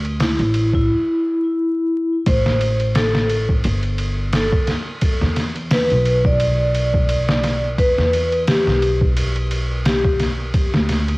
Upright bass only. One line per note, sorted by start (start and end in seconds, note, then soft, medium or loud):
0.00 0.35 D2 medium
0.39 0.89 A1 medium
2.27 3.62 A1 loud
3.65 4.49 G1 loud
5.22 5.87 E2 medium
5.91 7.76 B1 medium
7.98 8.63 E2 medium
8.67 10.52 B1 medium
10.74 11.18 D2 medium